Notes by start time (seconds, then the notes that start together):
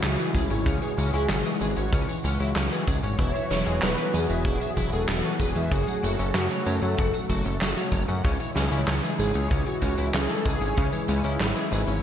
Already playing: C#3 E3 G#3 E4 F#4, downlifter
0.03 C#2 C#3 C#4, snare, clap, closed hi-hat
0.19 E3 G#4, closed hi-hat
0.35 C#2 G#3 E4 G#4, kick, closed hi-hat
0.51 G#1 C#4 C#5, closed hi-hat
0.66 C#2 C#3 C#4 F#4 G#4, kick, closed hi-hat
0.82 E3 C#5, closed hi-hat
0.98 C#2 G#3 C#4, closed hi-hat
1.14 C#2 C#4 E4, closed hi-hat
1.29 G#1 C#3 C#4, snare, clap, closed hi-hat
1.45 E3 G#4, closed hi-hat
1.61 G#1 G#3 G#4, closed hi-hat
1.77 G#1 C#4 C#5, closed hi-hat
1.93 C#2 C#3 C#4, kick, closed hi-hat
2.09 E3 C#5, closed hi-hat
2.24 C#2 G#3 C#4, closed hi-hat
2.40 C#2 C#4 E4, closed hi-hat
2.56 C#2 C#3 C#4, snare, clap, closed hi-hat
2.72 E3 G#4, closed hi-hat
2.87 C#2 G#3 G#4, kick, closed hi-hat
3.03 G#1 C#4 C#5, closed hi-hat
3.19 E1 B2 E3 F#3 B3 E4 C#5, kick, closed hi-hat
3.35 E3 E5, closed hi-hat
3.51 E1 F#3 E4, snare, closed hi-hat
3.66 E1 G#3 G#4, closed hi-hat
3.82 E1 B2 E4 B4, snare, clap, closed hi-hat
3.97 E3 B4, closed hi-hat
4.14 E2 F#3 G#4 B4, closed hi-hat
4.29 E1 G#3 E5, closed hi-hat
4.45 E1 B2 E4 G#4, kick, closed hi-hat
4.61 E3 E5, closed hi-hat
4.77 E1 F#3 E4, kick, closed hi-hat
4.92 E1 G#3 G#4 A4, closed hi-hat
5.08 E1 B2 E4, snare, clap, closed hi-hat
5.24 E3 B4, closed hi-hat
5.40 E1 F#3 G#4 B4, kick, closed hi-hat
5.56 E2 G#3 E5, closed hi-hat
5.72 F#1 C#3 F#3 A3 F#4 G#4, kick, closed hi-hat
5.87 F#3 F#5, closed hi-hat
6.03 F#1 A3 F#4, closed hi-hat
6.19 F#1 C#4 A4, closed hi-hat
6.34 F#2 C#3 F#4, snare, clap, closed hi-hat
6.50 F#3 C#5, closed hi-hat
6.59 B4
6.66 F#2 A3 A4 C#5, closed hi-hat
6.82 F#2 C#4 F#5, closed hi-hat
6.98 F#1 C#3 F#4, kick, closed hi-hat
7.14 F#3 F#5, closed hi-hat
7.29 F#1 A3 F#4, kick, closed hi-hat
7.44 F#1 C#4 A4, closed hi-hat
7.61 F#1 C#3 F#4, snare, clap, closed hi-hat
7.77 F#3 C#5, closed hi-hat
7.92 F#1 A3 C#5, kick, closed hi-hat
8.08 F#2 C#4 F#5, closed hi-hat
8.24 C#2 C#3 E3 G#3 C#4 E4, kick, closed hi-hat
8.40 E3 C#5, closed hi-hat
8.56 C#2 G#3 C#4, snare, closed hi-hat
8.72 C#2 C#4 E4, closed hi-hat
8.87 C#2 C#3 C#4, snare, clap, closed hi-hat
9.03 E3 G#4, closed hi-hat
9.19 G#1 G#3 G#4, closed hi-hat
9.34 C#2 C#4 C#5, closed hi-hat
9.51 C#2 C#3 C#4, kick, closed hi-hat
9.66 E3 F#4 C#5, closed hi-hat
9.81 C#2 G#3 C#4, kick, closed hi-hat
9.98 C#2 C#4 E4, closed hi-hat
10.14 C#2 C#3 C#4 G#4, snare, clap, closed hi-hat
10.29 E3 G#4 A4, closed hi-hat
10.45 C#2 G#3 G#4, kick, closed hi-hat
10.61 G#1 C#4 C#5, closed hi-hat
10.77 C#2 C#3 C#4, kick, closed hi-hat
10.92 E3 C#5, closed hi-hat
11.08 C#2 G#3 C#4, closed hi-hat
11.24 C#2 C#4 E4, closed hi-hat
11.40 G#1 C#3 C#4, snare, clap, closed hi-hat
11.56 E3 G#4, closed hi-hat
11.72 G#1 G#3 G#4, closed hi-hat
11.87 G#1 C#4 C#5, closed hi-hat